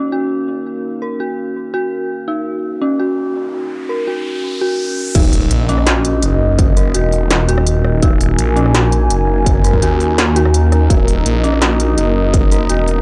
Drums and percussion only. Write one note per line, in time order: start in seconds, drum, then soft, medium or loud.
5.15 kick loud
5.15 closed hi-hat medium
5.15 crash loud
5.33 open hi-hat medium
5.51 closed hi-hat medium
5.69 open hi-hat soft
5.78 cross-stick soft
5.87 snare loud
5.87 closed hi-hat medium
6.05 closed hi-hat medium
6.23 closed hi-hat medium
6.59 kick loud
6.59 closed hi-hat medium
6.77 open hi-hat medium
6.94 closed hi-hat medium
7.12 open hi-hat soft
7.31 snare loud
7.31 closed hi-hat medium
7.49 closed hi-hat medium
7.58 cross-stick medium
7.67 closed hi-hat medium
7.85 cross-stick medium
8.03 kick loud
8.03 closed hi-hat medium
8.21 open hi-hat medium
8.39 closed hi-hat medium
8.57 open hi-hat soft
8.66 cross-stick soft
8.75 snare loud
8.75 closed hi-hat medium
8.92 closed hi-hat medium
9.10 closed hi-hat medium
9.46 kick loud
9.46 closed hi-hat medium
9.64 open hi-hat medium
9.73 kick medium
9.82 closed hi-hat medium
10.00 open hi-hat soft
10.18 snare loud
10.18 closed hi-hat medium
10.36 closed hi-hat medium
10.45 cross-stick medium
10.54 closed hi-hat medium
10.72 cross-stick medium
10.72 closed hi-hat soft
10.90 kick loud
10.90 closed hi-hat medium
11.08 open hi-hat medium
11.26 closed hi-hat medium
11.44 open hi-hat soft
11.53 cross-stick soft
11.62 snare loud
11.62 closed hi-hat medium
11.80 closed hi-hat medium
11.98 closed hi-hat medium
12.34 kick loud
12.34 closed hi-hat medium
12.52 open hi-hat medium
12.69 closed hi-hat medium
12.88 open hi-hat soft